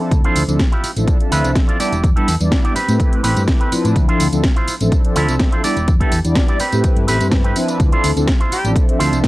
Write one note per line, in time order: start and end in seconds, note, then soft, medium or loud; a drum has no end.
0.00 0.21 F3 medium
0.00 0.21 C4 medium
0.00 0.21 D4 medium
0.00 0.22 E4 medium
0.00 0.22 A4 medium
0.00 muted clean electric guitar stroke soft
0.11 0.22 D2 medium
0.11 kick loud
0.11 closed hi-hat medium
0.11 tambourine soft
0.24 0.43 F3 medium
0.24 0.43 C4 medium
0.24 0.43 D4 medium
0.24 0.42 E4 loud
0.24 0.43 E4 medium
0.24 0.42 F4 medium
0.24 0.43 A4 medium
0.24 0.42 C5 loud
0.24 closed hi-hat soft
0.35 0.46 D2 medium
0.35 open hi-hat loud
0.35 tambourine medium
0.47 0.57 D2 medium
0.47 0.59 F3 medium
0.47 0.59 C4 medium
0.47 0.59 D4 medium
0.47 0.60 E4 medium
0.47 0.60 A4 medium
0.47 closed hi-hat soft
0.47 tambourine soft
0.59 muted clean electric guitar stroke soft
0.59 kick loud
0.59 snare loud
0.59 closed hi-hat medium
0.59 tambourine soft
0.72 0.90 E4 medium
0.72 0.90 F4 medium
0.72 0.90 G4 medium
0.72 closed hi-hat soft
0.84 muted fingered electric bass stroke soft
0.84 open hi-hat medium
0.84 tambourine medium
0.96 1.05 A1 medium
0.96 1.17 F3 medium
0.96 1.17 C4 medium
0.96 1.17 D4 medium
0.96 1.17 E4 medium
0.96 1.18 A4 medium
0.96 closed hi-hat soft
0.96 tambourine soft
1.07 muted clean electric guitar stroke soft
1.07 kick loud
1.07 closed hi-hat medium
1.07 tambourine soft
1.20 1.77 F3 medium
1.20 1.77 C4 medium
1.20 1.77 D4 medium
1.20 1.77 A4 medium
1.20 1.77 E5 medium
1.20 closed hi-hat soft
1.31 1.42 D2 medium
1.31 1.50 E4 loud
1.31 1.50 F4 medium
1.31 1.50 B4 loud
1.31 open hi-hat medium
1.31 tambourine medium
1.44 1.53 C2 medium
1.44 closed hi-hat soft
1.44 tambourine soft
1.55 kick loud
1.55 snare loud
1.55 closed hi-hat medium
1.55 tambourine soft
1.68 1.78 E4 medium
1.68 1.79 F4 medium
1.68 1.79 D5 medium
1.68 closed hi-hat soft
1.79 1.92 G3 medium
1.79 1.92 B3 medium
1.79 1.92 D4 medium
1.79 2.09 E4 medium
1.79 1.92 E4 medium
1.79 2.09 G4 medium
1.79 1.92 D5 loud
1.79 2.09 D5 medium
1.79 muted fingered electric bass stroke soft
1.79 open hi-hat medium
1.79 tambourine medium
1.92 2.01 E1 medium
1.92 closed hi-hat soft
1.92 tambourine soft
2.04 2.14 E2 medium
2.04 kick loud
2.04 closed hi-hat medium
2.04 tambourine soft
2.16 2.28 G3 medium
2.16 2.28 B3 medium
2.16 2.28 D4 medium
2.16 2.34 E4 loud
2.16 2.28 E4 medium
2.16 2.34 G4 loud
2.16 2.34 A4 loud
2.16 2.28 B4 loud
2.16 closed hi-hat soft
2.28 2.38 E2 medium
2.28 open hi-hat loud
2.28 tambourine medium
2.40 2.49 E2 medium
2.40 2.74 G3 medium
2.40 2.74 B3 medium
2.40 2.74 D4 medium
2.40 2.74 E4 medium
2.40 2.75 D5 loud
2.40 closed hi-hat soft
2.40 tambourine soft
2.51 muted clean electric guitar stroke soft
2.51 kick loud
2.51 snare loud
2.51 closed hi-hat medium
2.51 tambourine soft
2.64 2.74 E4 medium
2.64 2.74 G4 medium
2.64 2.76 D5 medium
2.64 closed hi-hat soft
2.75 3.14 C4 medium
2.75 3.15 G4 medium
2.75 3.15 B4 medium
2.75 muted fingered electric bass stroke soft
2.75 open hi-hat medium
2.75 tambourine medium
2.88 2.97 A2 medium
2.88 3.21 A3 medium
2.88 3.21 C4 medium
2.88 3.21 E4 medium
2.88 3.21 G4 medium
2.88 3.21 B4 loud
2.88 closed hi-hat soft
2.88 tambourine soft
3.00 kick loud
3.00 closed hi-hat medium
3.00 tambourine soft
3.13 closed hi-hat soft
3.23 3.34 A1 medium
3.23 3.33 A3 medium
3.23 3.42 C4 loud
3.23 3.34 C4 medium
3.23 3.34 E4 medium
3.23 3.42 G4 loud
3.23 3.34 G4 medium
3.23 3.42 B4 loud
3.23 3.34 C5 loud
3.23 open hi-hat loud
3.23 tambourine medium
3.36 3.45 G2 medium
3.36 3.69 A3 medium
3.36 3.69 C4 medium
3.36 3.69 E4 medium
3.36 3.69 G4 medium
3.36 3.69 B4 medium
3.36 closed hi-hat soft
3.36 tambourine soft
3.48 kick loud
3.48 snare loud
3.48 closed hi-hat medium
3.48 tambourine soft
3.60 3.72 C4 medium
3.60 3.72 G4 medium
3.60 3.72 B4 medium
3.60 closed hi-hat soft
3.72 4.05 F3 loud
3.72 4.05 C4 medium
3.72 4.05 D4 medium
3.72 4.06 E4 medium
3.72 4.06 B4 loud
3.72 muted fingered electric bass stroke soft
3.72 open hi-hat medium
3.72 tambourine medium
3.85 3.93 A2 medium
3.85 muted clean electric guitar stroke soft
3.85 closed hi-hat soft
3.85 tambourine soft
3.96 kick loud
3.96 closed hi-hat medium
3.96 tambourine soft
4.08 4.27 F3 medium
4.08 4.27 C4 medium
4.08 4.28 D4 medium
4.08 4.26 E4 loud
4.08 4.28 E4 medium
4.08 4.26 F4 medium
4.08 4.28 A4 medium
4.08 4.26 C5 loud
4.08 closed hi-hat soft
4.20 4.30 D2 medium
4.20 open hi-hat loud
4.20 tambourine medium
4.32 4.41 D2 medium
4.32 4.44 F3 medium
4.32 4.44 C4 medium
4.32 4.44 D4 medium
4.32 4.44 E4 medium
4.32 4.44 A4 medium
4.32 closed hi-hat soft
4.32 tambourine soft
4.43 muted clean electric guitar stroke soft
4.43 kick loud
4.43 snare loud
4.43 closed hi-hat medium
4.43 tambourine soft
4.56 4.74 E4 medium
4.56 4.74 F4 medium
4.56 4.74 C5 medium
4.56 closed hi-hat soft
4.68 muted fingered electric bass stroke soft
4.68 open hi-hat medium
4.68 tambourine medium
4.80 4.90 A1 medium
4.80 5.01 F3 medium
4.80 5.02 C4 medium
4.80 5.02 D4 medium
4.80 5.02 E4 medium
4.80 5.02 A4 medium
4.80 closed hi-hat soft
4.80 tambourine soft
4.92 muted clean electric guitar stroke soft
4.92 kick loud
4.92 closed hi-hat medium
4.92 tambourine soft
5.04 5.61 F3 medium
5.04 5.61 C4 medium
5.04 5.61 D4 medium
5.04 5.62 A4 medium
5.04 5.62 E5 medium
5.04 closed hi-hat soft
5.16 5.26 D2 medium
5.16 5.34 E4 loud
5.16 5.34 F4 loud
5.16 5.34 A4 loud
5.16 open hi-hat medium
5.16 tambourine medium
5.28 5.37 C2 medium
5.28 closed hi-hat soft
5.28 tambourine soft
5.39 kick loud
5.39 snare loud
5.39 closed hi-hat medium
5.39 tambourine soft
5.52 5.62 E4 medium
5.52 5.64 F4 medium
5.52 5.64 C5 medium
5.52 closed hi-hat soft
5.63 5.76 G3 loud
5.63 5.76 B3 medium
5.63 5.76 D4 medium
5.63 5.93 E4 medium
5.63 5.77 E4 medium
5.63 5.93 G4 medium
5.63 5.93 D5 loud
5.63 5.77 D5 loud
5.63 muted fingered electric bass stroke soft
5.63 open hi-hat medium
5.63 tambourine medium
5.77 5.85 E1 medium
5.77 closed hi-hat soft
5.77 tambourine soft
5.88 5.98 E2 medium
5.88 kick loud
5.88 closed hi-hat medium
5.88 tambourine soft
6.00 6.12 G3 medium
6.00 6.12 B3 medium
6.00 6.12 D4 medium
6.00 6.18 E4 loud
6.00 6.12 E4 medium
6.00 6.18 G4 medium
6.00 6.19 A4 loud
6.00 6.12 B4 loud
6.00 kick medium
6.00 closed hi-hat soft
6.12 6.22 E2 medium
6.12 open hi-hat loud
6.12 tambourine medium
6.24 6.34 E2 medium
6.24 6.58 G3 medium
6.24 6.58 B3 medium
6.24 6.58 D4 medium
6.24 6.59 E4 medium
6.24 6.59 D5 loud
6.24 closed hi-hat soft
6.24 tambourine soft
6.35 muted clean electric guitar stroke soft
6.35 kick loud
6.35 snare loud
6.35 closed hi-hat medium
6.35 tambourine soft
6.48 6.59 E4 medium
6.48 6.59 G4 medium
6.48 6.60 D5 medium
6.48 closed hi-hat soft
6.60 6.99 C4 medium
6.60 6.99 G4 medium
6.60 6.99 B4 medium
6.60 muted fingered electric bass stroke soft
6.60 open hi-hat medium
6.60 tambourine medium
6.72 6.82 A2 medium
6.72 7.05 A3 loud
6.72 7.05 C4 medium
6.72 7.05 E4 medium
6.72 7.05 G4 medium
6.72 7.05 B4 loud
6.72 closed hi-hat soft
6.72 tambourine soft
6.84 kick loud
6.84 closed hi-hat medium
6.84 tambourine soft
6.97 7.05 G2 medium
6.97 closed hi-hat soft
7.07 7.18 A1 medium
7.07 7.17 A3 medium
7.07 7.26 C4 loud
7.07 7.17 C4 medium
7.07 7.17 E4 medium
7.07 7.26 G4 medium
7.07 7.18 G4 medium
7.07 7.26 B4 loud
7.07 7.18 C5 medium
7.07 open hi-hat medium
7.07 tambourine medium
7.20 7.52 G2 medium
7.20 7.53 A3 medium
7.20 7.53 C4 medium
7.20 7.53 E4 medium
7.20 7.53 G4 medium
7.20 7.53 B4 medium
7.20 closed hi-hat soft
7.20 tambourine soft
7.31 kick loud
7.31 snare loud
7.31 closed hi-hat medium
7.31 tambourine soft
7.44 7.56 C4 medium
7.44 7.56 G4 medium
7.44 7.56 B4 medium
7.44 closed hi-hat soft
7.55 7.89 F3 loud
7.55 7.89 C4 medium
7.55 7.89 D4 medium
7.55 7.89 E4 medium
7.55 7.90 B4 loud
7.55 open hi-hat medium
7.55 tambourine medium
7.68 muted clean electric guitar stroke soft
7.68 closed hi-hat soft
7.68 tambourine soft
7.80 7.90 D2 medium
7.80 kick loud
7.80 closed hi-hat medium
7.80 tambourine soft
7.92 8.11 F3 medium
7.92 8.11 C4 medium
7.92 8.11 D4 medium
7.92 8.10 E4 loud
7.92 8.11 E4 medium
7.92 8.10 F4 medium
7.92 8.11 A4 medium
7.92 8.10 C5 loud
7.92 closed hi-hat soft
8.04 8.14 D2 medium
8.04 open hi-hat loud
8.04 tambourine medium
8.16 8.25 D2 medium
8.16 8.27 F3 medium
8.16 8.28 C4 medium
8.16 8.28 D4 medium
8.16 8.28 E4 medium
8.16 8.28 A4 medium
8.16 closed hi-hat soft
8.16 tambourine soft
8.28 muted clean electric guitar stroke soft
8.28 kick loud
8.28 snare loud
8.28 closed hi-hat medium
8.28 tambourine soft
8.40 8.58 E4 medium
8.40 8.58 F4 medium
8.40 8.58 C5 medium
8.40 closed hi-hat soft
8.52 8.70 G3 medium
8.52 8.70 G4 medium
8.52 muted fingered electric bass stroke soft
8.52 open hi-hat medium
8.52 tambourine medium
8.64 8.73 A1 medium
8.64 8.85 F3 medium
8.64 8.85 C4 medium
8.64 8.85 D4 medium
8.64 8.86 E4 medium
8.64 8.86 A4 medium
8.64 closed hi-hat soft
8.64 tambourine soft
8.76 muted clean electric guitar stroke soft
8.76 kick loud
8.76 closed hi-hat medium
8.76 tambourine soft
8.88 9.28 F3 medium
8.88 9.28 C4 medium
8.88 9.28 D4 medium
8.88 9.28 A4 medium
8.88 9.28 E5 medium
8.88 closed hi-hat soft
8.99 9.10 D2 medium
8.99 9.18 E4 loud
8.99 9.18 F4 loud
8.99 9.18 C5 loud
8.99 open hi-hat loud
8.99 tambourine medium
9.12 9.21 C2 medium
9.12 closed hi-hat soft
9.12 tambourine soft
9.24 kick loud
9.24 snare loud
9.24 closed hi-hat medium
9.24 tambourine soft